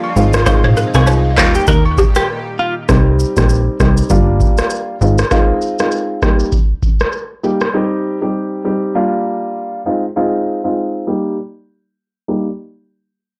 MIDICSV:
0, 0, Header, 1, 7, 480
1, 0, Start_track
1, 0, Key_signature, -3, "major"
1, 0, Tempo, 606061
1, 368, Time_signature, 4, 2, 24, 8
1, 10606, End_track
2, 0, Start_track
2, 0, Title_t, "Balafon"
2, 0, Program_c, 0, 12
2, 509, Note_on_c, 0, 72, 82
2, 562, Note_off_c, 0, 72, 0
2, 610, Note_on_c, 0, 70, 75
2, 674, Note_off_c, 0, 70, 0
2, 850, Note_on_c, 0, 72, 89
2, 913, Note_off_c, 0, 72, 0
2, 1092, Note_on_c, 0, 72, 80
2, 1155, Note_off_c, 0, 72, 0
2, 1330, Note_on_c, 0, 70, 85
2, 1393, Note_off_c, 0, 70, 0
2, 1571, Note_on_c, 0, 67, 81
2, 1634, Note_off_c, 0, 67, 0
2, 10606, End_track
3, 0, Start_track
3, 0, Title_t, "Clean electric guitar"
3, 0, Program_c, 1, 27
3, 372, Note_on_c, 1, 72, 102
3, 489, Note_off_c, 1, 72, 0
3, 750, Note_on_c, 1, 68, 81
3, 835, Note_off_c, 1, 68, 0
3, 1092, Note_on_c, 1, 65, 82
3, 1209, Note_off_c, 1, 65, 0
3, 1231, Note_on_c, 1, 67, 82
3, 1315, Note_off_c, 1, 67, 0
3, 1332, Note_on_c, 1, 70, 85
3, 1449, Note_off_c, 1, 70, 0
3, 1711, Note_on_c, 1, 67, 81
3, 1795, Note_off_c, 1, 67, 0
3, 2053, Note_on_c, 1, 65, 84
3, 2169, Note_off_c, 1, 65, 0
3, 10606, End_track
4, 0, Start_track
4, 0, Title_t, "Grand piano"
4, 0, Program_c, 2, 0
4, 0, Note_on_c, 2, 58, 87
4, 0, Note_on_c, 2, 62, 85
4, 0, Note_on_c, 2, 65, 104
4, 80, Note_off_c, 2, 58, 0
4, 81, Note_off_c, 2, 62, 0
4, 81, Note_off_c, 2, 65, 0
4, 127, Note_on_c, 2, 56, 80
4, 128, Note_on_c, 2, 60, 73
4, 130, Note_on_c, 2, 63, 75
4, 131, Note_on_c, 2, 65, 86
4, 264, Note_off_c, 2, 56, 0
4, 265, Note_off_c, 2, 60, 0
4, 265, Note_off_c, 2, 63, 0
4, 266, Note_off_c, 2, 65, 0
4, 366, Note_on_c, 2, 56, 95
4, 367, Note_on_c, 2, 60, 86
4, 369, Note_on_c, 2, 63, 86
4, 370, Note_on_c, 2, 65, 101
4, 713, Note_off_c, 2, 56, 0
4, 714, Note_off_c, 2, 60, 0
4, 714, Note_off_c, 2, 63, 0
4, 715, Note_off_c, 2, 65, 0
4, 745, Note_on_c, 2, 56, 74
4, 746, Note_on_c, 2, 60, 71
4, 748, Note_on_c, 2, 63, 67
4, 749, Note_on_c, 2, 65, 83
4, 1063, Note_off_c, 2, 56, 0
4, 1064, Note_off_c, 2, 60, 0
4, 1064, Note_off_c, 2, 63, 0
4, 1065, Note_off_c, 2, 65, 0
4, 1086, Note_on_c, 2, 55, 81
4, 1087, Note_on_c, 2, 58, 73
4, 1089, Note_on_c, 2, 63, 72
4, 1090, Note_on_c, 2, 67, 85
4, 1311, Note_off_c, 2, 55, 0
4, 1312, Note_off_c, 2, 58, 0
4, 1312, Note_off_c, 2, 63, 0
4, 1313, Note_off_c, 2, 67, 0
4, 2286, Note_on_c, 2, 55, 90
4, 2287, Note_on_c, 2, 60, 80
4, 2288, Note_on_c, 2, 63, 80
4, 2290, Note_on_c, 2, 67, 95
4, 2633, Note_off_c, 2, 55, 0
4, 2633, Note_off_c, 2, 60, 0
4, 2634, Note_off_c, 2, 63, 0
4, 2635, Note_off_c, 2, 67, 0
4, 2665, Note_on_c, 2, 55, 71
4, 2667, Note_on_c, 2, 60, 65
4, 2668, Note_on_c, 2, 63, 64
4, 2671, Note_on_c, 2, 67, 78
4, 2983, Note_off_c, 2, 55, 0
4, 2984, Note_off_c, 2, 60, 0
4, 2985, Note_off_c, 2, 63, 0
4, 2986, Note_off_c, 2, 67, 0
4, 3006, Note_on_c, 2, 55, 74
4, 3008, Note_on_c, 2, 60, 67
4, 3009, Note_on_c, 2, 63, 69
4, 3011, Note_on_c, 2, 67, 82
4, 3231, Note_off_c, 2, 55, 0
4, 3232, Note_off_c, 2, 60, 0
4, 3233, Note_off_c, 2, 63, 0
4, 3234, Note_off_c, 2, 67, 0
4, 3246, Note_on_c, 2, 55, 88
4, 3248, Note_on_c, 2, 58, 82
4, 3249, Note_on_c, 2, 62, 80
4, 3250, Note_on_c, 2, 65, 98
4, 3919, Note_off_c, 2, 55, 0
4, 3920, Note_off_c, 2, 58, 0
4, 3921, Note_off_c, 2, 62, 0
4, 3921, Note_off_c, 2, 65, 0
4, 3967, Note_on_c, 2, 56, 72
4, 3968, Note_on_c, 2, 60, 66
4, 3970, Note_on_c, 2, 63, 70
4, 3971, Note_on_c, 2, 65, 84
4, 4104, Note_off_c, 2, 56, 0
4, 4105, Note_off_c, 2, 60, 0
4, 4106, Note_off_c, 2, 63, 0
4, 4106, Note_off_c, 2, 65, 0
4, 4206, Note_on_c, 2, 56, 87
4, 4208, Note_on_c, 2, 60, 80
4, 4209, Note_on_c, 2, 63, 82
4, 4211, Note_on_c, 2, 65, 102
4, 4553, Note_off_c, 2, 56, 0
4, 4554, Note_off_c, 2, 60, 0
4, 4554, Note_off_c, 2, 63, 0
4, 4555, Note_off_c, 2, 65, 0
4, 4586, Note_on_c, 2, 56, 68
4, 4587, Note_on_c, 2, 60, 63
4, 4589, Note_on_c, 2, 63, 66
4, 4590, Note_on_c, 2, 65, 77
4, 4903, Note_off_c, 2, 56, 0
4, 4904, Note_off_c, 2, 60, 0
4, 4905, Note_off_c, 2, 63, 0
4, 4906, Note_off_c, 2, 65, 0
4, 4927, Note_on_c, 2, 55, 74
4, 4928, Note_on_c, 2, 58, 70
4, 4930, Note_on_c, 2, 63, 67
4, 4931, Note_on_c, 2, 67, 80
4, 5152, Note_off_c, 2, 55, 0
4, 5152, Note_off_c, 2, 58, 0
4, 5153, Note_off_c, 2, 63, 0
4, 5154, Note_off_c, 2, 67, 0
4, 5887, Note_on_c, 2, 55, 76
4, 5888, Note_on_c, 2, 58, 70
4, 5890, Note_on_c, 2, 63, 66
4, 5891, Note_on_c, 2, 67, 85
4, 6024, Note_off_c, 2, 55, 0
4, 6025, Note_off_c, 2, 58, 0
4, 6025, Note_off_c, 2, 63, 0
4, 6026, Note_off_c, 2, 67, 0
4, 6127, Note_on_c, 2, 55, 88
4, 6128, Note_on_c, 2, 60, 79
4, 6130, Note_on_c, 2, 63, 83
4, 6132, Note_on_c, 2, 67, 97
4, 6473, Note_off_c, 2, 55, 0
4, 6474, Note_off_c, 2, 60, 0
4, 6475, Note_off_c, 2, 63, 0
4, 6476, Note_off_c, 2, 67, 0
4, 6506, Note_on_c, 2, 55, 70
4, 6508, Note_on_c, 2, 60, 63
4, 6510, Note_on_c, 2, 63, 65
4, 6511, Note_on_c, 2, 67, 78
4, 6824, Note_off_c, 2, 55, 0
4, 6825, Note_off_c, 2, 60, 0
4, 6825, Note_off_c, 2, 63, 0
4, 6826, Note_off_c, 2, 67, 0
4, 6847, Note_on_c, 2, 55, 72
4, 6849, Note_on_c, 2, 60, 68
4, 6850, Note_on_c, 2, 63, 65
4, 6852, Note_on_c, 2, 67, 84
4, 7072, Note_off_c, 2, 55, 0
4, 7072, Note_off_c, 2, 60, 0
4, 7073, Note_off_c, 2, 63, 0
4, 7074, Note_off_c, 2, 67, 0
4, 7088, Note_on_c, 2, 55, 88
4, 7089, Note_on_c, 2, 58, 82
4, 7091, Note_on_c, 2, 62, 76
4, 7092, Note_on_c, 2, 65, 94
4, 7760, Note_off_c, 2, 55, 0
4, 7760, Note_off_c, 2, 58, 0
4, 7761, Note_off_c, 2, 62, 0
4, 7762, Note_off_c, 2, 65, 0
4, 7807, Note_on_c, 2, 56, 71
4, 7808, Note_on_c, 2, 60, 67
4, 7810, Note_on_c, 2, 63, 68
4, 7811, Note_on_c, 2, 65, 79
4, 7944, Note_off_c, 2, 56, 0
4, 7945, Note_off_c, 2, 60, 0
4, 7945, Note_off_c, 2, 63, 0
4, 7946, Note_off_c, 2, 65, 0
4, 8047, Note_on_c, 2, 56, 85
4, 8049, Note_on_c, 2, 60, 78
4, 8050, Note_on_c, 2, 63, 80
4, 8051, Note_on_c, 2, 65, 95
4, 8394, Note_off_c, 2, 56, 0
4, 8394, Note_off_c, 2, 60, 0
4, 8395, Note_off_c, 2, 63, 0
4, 8396, Note_off_c, 2, 65, 0
4, 8426, Note_on_c, 2, 56, 68
4, 8428, Note_on_c, 2, 60, 61
4, 8429, Note_on_c, 2, 63, 63
4, 8431, Note_on_c, 2, 65, 79
4, 8744, Note_off_c, 2, 56, 0
4, 8745, Note_off_c, 2, 60, 0
4, 8745, Note_off_c, 2, 63, 0
4, 8746, Note_off_c, 2, 65, 0
4, 8768, Note_on_c, 2, 55, 73
4, 8769, Note_on_c, 2, 58, 65
4, 8771, Note_on_c, 2, 63, 64
4, 8772, Note_on_c, 2, 67, 80
4, 8992, Note_off_c, 2, 55, 0
4, 8993, Note_off_c, 2, 58, 0
4, 8993, Note_off_c, 2, 63, 0
4, 8994, Note_off_c, 2, 67, 0
4, 9727, Note_on_c, 2, 55, 72
4, 9729, Note_on_c, 2, 58, 66
4, 9730, Note_on_c, 2, 63, 67
4, 9732, Note_on_c, 2, 67, 77
4, 9864, Note_off_c, 2, 55, 0
4, 9865, Note_off_c, 2, 58, 0
4, 9866, Note_off_c, 2, 63, 0
4, 9867, Note_off_c, 2, 67, 0
4, 10606, End_track
5, 0, Start_track
5, 0, Title_t, "Analog synth pad"
5, 0, Program_c, 3, 89
5, 0, Note_on_c, 3, 50, 76
5, 0, Note_on_c, 3, 53, 72
5, 0, Note_on_c, 3, 55, 76
5, 0, Note_on_c, 3, 58, 72
5, 0, Note_on_c, 3, 65, 87
5, 99, Note_off_c, 3, 55, 0
5, 121, Note_off_c, 3, 50, 0
5, 121, Note_off_c, 3, 58, 0
5, 128, Note_on_c, 3, 48, 79
5, 128, Note_on_c, 3, 63, 71
5, 129, Note_on_c, 3, 56, 68
5, 1071, Note_off_c, 3, 65, 0
5, 1072, Note_off_c, 3, 53, 0
5, 1078, Note_off_c, 3, 48, 0
5, 1079, Note_off_c, 3, 56, 0
5, 1088, Note_on_c, 3, 55, 74
5, 1088, Note_on_c, 3, 67, 84
5, 1089, Note_on_c, 3, 46, 83
5, 1089, Note_on_c, 3, 51, 73
5, 2267, Note_off_c, 3, 63, 0
5, 2276, Note_off_c, 3, 55, 0
5, 2276, Note_off_c, 3, 67, 0
5, 2277, Note_off_c, 3, 46, 0
5, 2277, Note_off_c, 3, 51, 0
5, 10606, End_track
6, 0, Start_track
6, 0, Title_t, "Analog synth bass"
6, 0, Program_c, 4, 38
6, 128, Note_on_c, 4, 32, 100
6, 594, Note_off_c, 4, 32, 0
6, 748, Note_on_c, 4, 36, 97
6, 1089, Note_on_c, 4, 39, 107
6, 1101, Note_off_c, 4, 36, 0
6, 1270, Note_off_c, 4, 39, 0
6, 1326, Note_on_c, 4, 39, 99
6, 1612, Note_off_c, 4, 39, 0
6, 2289, Note_on_c, 4, 36, 107
6, 2574, Note_off_c, 4, 36, 0
6, 2667, Note_on_c, 4, 34, 92
6, 2924, Note_off_c, 4, 34, 0
6, 3010, Note_on_c, 4, 36, 89
6, 3190, Note_off_c, 4, 36, 0
6, 3247, Note_on_c, 4, 31, 111
6, 3533, Note_off_c, 4, 31, 0
6, 3969, Note_on_c, 4, 32, 101
6, 4149, Note_off_c, 4, 32, 0
6, 10606, End_track
7, 0, Start_track
7, 0, Title_t, "Drums"
7, 29, Note_on_c, 9, 67, 80
7, 108, Note_off_c, 9, 67, 0
7, 132, Note_on_c, 9, 82, 58
7, 211, Note_off_c, 9, 82, 0
7, 264, Note_on_c, 9, 82, 85
7, 270, Note_on_c, 9, 37, 95
7, 343, Note_off_c, 9, 82, 0
7, 350, Note_off_c, 9, 37, 0
7, 362, Note_on_c, 9, 67, 81
7, 367, Note_on_c, 9, 37, 104
7, 367, Note_on_c, 9, 82, 75
7, 368, Note_on_c, 9, 36, 120
7, 442, Note_off_c, 9, 67, 0
7, 446, Note_off_c, 9, 37, 0
7, 446, Note_off_c, 9, 82, 0
7, 447, Note_off_c, 9, 36, 0
7, 506, Note_on_c, 9, 45, 104
7, 585, Note_off_c, 9, 45, 0
7, 609, Note_on_c, 9, 82, 63
7, 688, Note_off_c, 9, 82, 0
7, 746, Note_on_c, 9, 82, 73
7, 754, Note_on_c, 9, 67, 81
7, 756, Note_on_c, 9, 37, 92
7, 826, Note_off_c, 9, 82, 0
7, 833, Note_off_c, 9, 67, 0
7, 835, Note_off_c, 9, 37, 0
7, 841, Note_on_c, 9, 77, 72
7, 846, Note_on_c, 9, 82, 81
7, 921, Note_off_c, 9, 77, 0
7, 925, Note_off_c, 9, 82, 0
7, 1088, Note_on_c, 9, 67, 85
7, 1089, Note_on_c, 9, 36, 95
7, 1089, Note_on_c, 9, 82, 52
7, 1091, Note_on_c, 9, 37, 98
7, 1091, Note_on_c, 9, 39, 98
7, 1167, Note_off_c, 9, 67, 0
7, 1168, Note_off_c, 9, 36, 0
7, 1168, Note_off_c, 9, 82, 0
7, 1171, Note_off_c, 9, 37, 0
7, 1171, Note_off_c, 9, 39, 0
7, 1225, Note_on_c, 9, 82, 80
7, 1305, Note_off_c, 9, 82, 0
7, 1324, Note_on_c, 9, 82, 92
7, 1326, Note_on_c, 9, 36, 96
7, 1403, Note_off_c, 9, 82, 0
7, 1405, Note_off_c, 9, 36, 0
7, 1468, Note_on_c, 9, 67, 83
7, 1548, Note_off_c, 9, 67, 0
7, 1565, Note_on_c, 9, 36, 96
7, 1567, Note_on_c, 9, 82, 54
7, 1645, Note_off_c, 9, 36, 0
7, 1646, Note_off_c, 9, 82, 0
7, 1705, Note_on_c, 9, 82, 86
7, 1713, Note_on_c, 9, 37, 95
7, 1784, Note_off_c, 9, 82, 0
7, 1792, Note_off_c, 9, 37, 0
7, 2288, Note_on_c, 9, 36, 111
7, 2288, Note_on_c, 9, 37, 104
7, 2288, Note_on_c, 9, 82, 68
7, 2367, Note_off_c, 9, 36, 0
7, 2367, Note_off_c, 9, 37, 0
7, 2367, Note_off_c, 9, 82, 0
7, 2530, Note_on_c, 9, 82, 58
7, 2609, Note_off_c, 9, 82, 0
7, 2667, Note_on_c, 9, 36, 85
7, 2667, Note_on_c, 9, 82, 70
7, 2676, Note_on_c, 9, 37, 85
7, 2746, Note_off_c, 9, 36, 0
7, 2746, Note_off_c, 9, 82, 0
7, 2755, Note_off_c, 9, 37, 0
7, 2766, Note_on_c, 9, 82, 73
7, 2845, Note_off_c, 9, 82, 0
7, 3010, Note_on_c, 9, 36, 89
7, 3010, Note_on_c, 9, 82, 48
7, 3012, Note_on_c, 9, 37, 88
7, 3089, Note_off_c, 9, 36, 0
7, 3089, Note_off_c, 9, 82, 0
7, 3091, Note_off_c, 9, 37, 0
7, 3146, Note_on_c, 9, 82, 73
7, 3225, Note_off_c, 9, 82, 0
7, 3245, Note_on_c, 9, 82, 84
7, 3247, Note_on_c, 9, 36, 96
7, 3324, Note_off_c, 9, 82, 0
7, 3326, Note_off_c, 9, 36, 0
7, 3486, Note_on_c, 9, 36, 89
7, 3489, Note_on_c, 9, 82, 52
7, 3566, Note_off_c, 9, 36, 0
7, 3568, Note_off_c, 9, 82, 0
7, 3625, Note_on_c, 9, 82, 79
7, 3632, Note_on_c, 9, 37, 90
7, 3704, Note_off_c, 9, 82, 0
7, 3711, Note_off_c, 9, 37, 0
7, 3723, Note_on_c, 9, 82, 74
7, 3802, Note_off_c, 9, 82, 0
7, 3973, Note_on_c, 9, 82, 54
7, 4052, Note_off_c, 9, 82, 0
7, 4104, Note_on_c, 9, 82, 76
7, 4111, Note_on_c, 9, 37, 83
7, 4183, Note_off_c, 9, 82, 0
7, 4190, Note_off_c, 9, 37, 0
7, 4207, Note_on_c, 9, 37, 99
7, 4207, Note_on_c, 9, 82, 69
7, 4208, Note_on_c, 9, 36, 107
7, 4286, Note_off_c, 9, 37, 0
7, 4286, Note_off_c, 9, 82, 0
7, 4287, Note_off_c, 9, 36, 0
7, 4449, Note_on_c, 9, 82, 57
7, 4528, Note_off_c, 9, 82, 0
7, 4585, Note_on_c, 9, 82, 71
7, 4595, Note_on_c, 9, 37, 85
7, 4664, Note_off_c, 9, 82, 0
7, 4674, Note_off_c, 9, 37, 0
7, 4685, Note_on_c, 9, 82, 75
7, 4764, Note_off_c, 9, 82, 0
7, 4929, Note_on_c, 9, 82, 51
7, 4930, Note_on_c, 9, 36, 88
7, 4931, Note_on_c, 9, 37, 91
7, 5008, Note_off_c, 9, 82, 0
7, 5009, Note_off_c, 9, 36, 0
7, 5010, Note_off_c, 9, 37, 0
7, 5065, Note_on_c, 9, 82, 74
7, 5144, Note_off_c, 9, 82, 0
7, 5165, Note_on_c, 9, 82, 83
7, 5167, Note_on_c, 9, 36, 91
7, 5244, Note_off_c, 9, 82, 0
7, 5246, Note_off_c, 9, 36, 0
7, 5406, Note_on_c, 9, 36, 85
7, 5407, Note_on_c, 9, 82, 50
7, 5485, Note_off_c, 9, 36, 0
7, 5486, Note_off_c, 9, 82, 0
7, 5543, Note_on_c, 9, 82, 79
7, 5551, Note_on_c, 9, 37, 91
7, 5623, Note_off_c, 9, 82, 0
7, 5630, Note_off_c, 9, 37, 0
7, 5642, Note_on_c, 9, 82, 70
7, 5721, Note_off_c, 9, 82, 0
7, 5892, Note_on_c, 9, 82, 51
7, 5971, Note_off_c, 9, 82, 0
7, 6024, Note_on_c, 9, 82, 80
7, 6031, Note_on_c, 9, 37, 84
7, 6104, Note_off_c, 9, 82, 0
7, 6110, Note_off_c, 9, 37, 0
7, 10606, End_track
0, 0, End_of_file